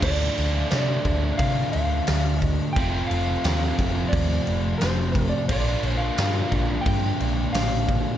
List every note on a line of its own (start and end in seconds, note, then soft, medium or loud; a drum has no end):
0.02 0.27 D2 loud
0.02 2.75 D3 medium
0.02 2.76 A3 medium
0.02 2.76 D4 medium
0.02 2.79 F4 medium
0.02 0.68 D5 loud
0.02 kick loud
0.02 crash loud
0.02 crash medium
0.38 0.63 D2 medium
0.38 crash medium
0.71 0.97 C3 medium
0.71 1.36 D5 loud
0.71 snare loud
0.71 crash medium
1.05 1.30 D2 medium
1.05 kick medium
1.05 crash medium
1.38 1.64 C3 medium
1.38 1.71 F5 loud
1.38 kick loud
1.38 crash medium
1.72 1.99 D2 medium
1.72 2.42 F5 loud
1.72 crash medium
2.07 2.58 D2 medium
2.07 snare loud
2.07 crash medium
2.42 2.72 D#5 loud
2.42 kick medium
2.42 crash medium
2.73 3.01 F1 loud
2.73 3.07 G5 loud
2.73 kick loud
2.73 crash medium
2.77 5.49 F2 medium
2.77 5.49 C3 medium
2.77 5.49 F3 loud
2.77 5.49 A3 loud
2.77 5.50 C4 loud
2.77 5.50 F4 loud
3.07 4.15 F5 loud
3.07 crash medium
3.11 3.36 F1 medium
3.44 3.70 D#2 loud
3.44 snare loud
3.44 crash medium
3.79 4.04 F1 medium
3.79 kick medium
3.79 crash medium
4.09 4.78 D5 loud
4.13 4.38 D#2 loud
4.13 kick loud
4.13 crash medium
4.47 4.72 F1 medium
4.47 crash medium
4.78 5.28 C5 medium
4.78 snare loud
4.78 crash medium
4.82 5.31 F1 medium
5.15 kick medium
5.15 crash medium
5.29 5.47 D5 medium
5.48 5.74 A#1 loud
5.48 8.18 A#2 medium
5.48 8.18 D3 medium
5.48 8.18 A#3 loud
5.48 8.18 D4 loud
5.48 8.18 F4 loud
5.48 5.91 D5 loud
5.48 kick loud
5.48 crash medium
5.83 6.08 A#1 medium
5.83 crash medium
5.91 6.02 C5 loud
5.97 6.88 F5 medium
6.18 6.43 G2 loud
6.18 snare loud
6.18 crash medium
6.51 6.76 A#1 loud
6.51 kick medium
6.51 crash medium
6.81 7.52 G5 loud
6.86 7.12 G2 loud
6.86 kick loud
6.86 crash medium
7.20 7.45 A#1 medium
7.20 crash medium
7.53 8.03 A1 medium
7.53 8.18 F5 loud
7.53 snare loud
7.53 crash medium
7.89 kick medium
7.89 crash medium